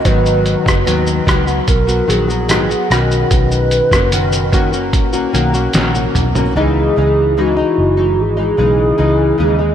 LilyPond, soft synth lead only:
\new Staff \with { instrumentName = "Soft synth lead" } { \time 4/4 \key cis \dorian \tempo 4 = 74 b'4. r8 ais'8 gis'4 ais'8 | b'2 r2 | gis'4 fis'4 gis'2 | }